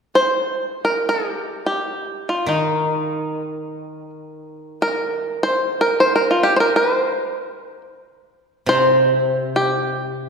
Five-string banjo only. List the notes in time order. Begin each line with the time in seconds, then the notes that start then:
0.15 C5
0.85 A#4
1.09 G4
1.66 G4
2.29 F4
2.48 D#4
4.82 A#4
5.43 C5
5.81 A#4
6.00 C5
6.16 A#4
6.31 F4
6.43 G4
6.56 A#4 C5
6.76 B4
6.94 C5
8.69 C5
9.56 G4